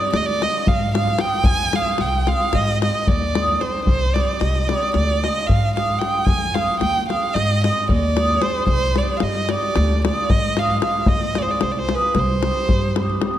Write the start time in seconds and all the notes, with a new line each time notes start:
Already playing: G3 D5
0.01 davul high
0.12 D2 D5, davul high
0.17 D#5
0.26 D5, davul high
0.39 G#3 D4 F4 G#4 D#5, davul high
0.67 G#2 F5, davul low
0.94 G#3 D4 F4 G#4 F5, davul high
1.07 davul high
1.18 G#3 D4 F4 G#4 G5, davul high
1.44 F2 G#5, davul low
1.72 G#3 C4 F4 G#4 F5, davul high
1.86 davul high
1.98 C2 G5, davul high
2.12 davul high
2.27 G#3 C4 F4 G#4 F5, davul high
2.40 davul high
2.53 G#2 D#5, davul high, davul low
2.68 davul high
2.82 G#3 C4 D#4 G#4 D#5, davul high
3.07 D#2 D5, davul low
3.22 davul high
3.35 G#3 C4 D#4 G#4, davul high
3.49 davul high
3.61 G#3 C4 D#4 G#4 C5, davul high
3.74 davul high
3.85 C2 C5, davul low
4.14 G3 C4 D#4 G4 D5, davul high
4.40 C2 D#5, davul high
4.55 davul high
4.67 G3 C4 D#4 D5, davul high
4.71 G4
4.82 davul high
4.94 D2 D5, davul high
5.09 davul high
5.22 G#3 D4 F4 G#4 D#5, davul high
5.47 G#2 F5, davul low
5.75 G#3 D4 F4 G#4 F5, davul high
5.89 davul high
5.99 G#3 D4 F4 G5, davul high
6.03 G#4
6.25 F2 G#5, davul low
6.53 G#3 C4 F4 G#4 F5, davul high
6.80 D#2 G5, davul high
6.96 davul high
7.09 G#3 C4 F4 G#4 F5, davul high
7.23 davul high
7.34 G#2 D#5, davul high
7.50 davul high
7.63 G#3 C4 D#4 G#4 D#5, davul high
7.89 D#2 D5, davul low
8.17 G#3 C4 D#4 G#4, davul high
8.29 davul high
8.41 G#3 C4 D#4 G#4 C5, davul high
8.67 C2 C5, davul low
8.96 G3 C4 D#4 G4 D5, davul high
9.17 F5, davul high
9.22 G2 D#5
9.36 davul high
9.49 G3 C4 D#4 G4 D5, davul high
9.63 davul high
9.76 D2, davul high
9.90 davul high
10.04 G#3 D4 F4 G#4 D5, davul high
10.30 G#2 D#5, davul low
10.57 G#3 D4 F4 G#4 F5, davul high
10.70 davul high
10.82 G#3 D4 F4 G#4 F5, davul high
11.06 F2 D#5, davul low
11.21 davul high
11.35 G#3 C4 F4 G#4 D5, davul high
11.42 C5
11.49 D5, davul high
11.61 C2 C5, davul high
11.71 D5
11.79 C5
11.89 G#3 C4 F4 G#4, davul high
11.94 B4
12.02 davul high
12.15 C2, davul high, davul low
12.19 C5
12.29 davul high
12.43 G3 C4 D#4 G4, davul high
12.56 davul high
12.69 G2, davul low
12.96 G3 C4 D#4 G4, davul high
13.10 davul high
13.22 G3 C4 D#4 G4, davul high
13.34 davul high